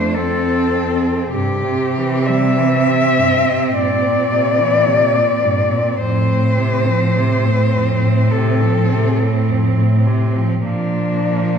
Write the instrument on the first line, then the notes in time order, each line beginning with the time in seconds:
cello
Already playing: F2 A3 D4 C5
0.15 C4 A4
1.33 G2 C3 C4 G4
1.65 C3
1.98 E3
2.26 G3 E5
2.58 E3
2.88 C3
3.18 G2
3.47 C3
3.74 G2 A#2 D5
4.05 A#2
4.32 C3
4.61 E3
4.88 C3
5.17 A#2
5.45 G2
5.73 A#2
6.01 F2 A2 C4 C5
6.30 A2
6.59 C3
6.88 F3
7.18 C3
7.46 A2
7.76 F2
8.04 A2
8.32 C3 A4
8.62 F3
8.91 C3
9.19 A2
9.49 F2
9.78 A2
10.06 C3
10.36 F3
10.65 A#2 F3 A#3 D4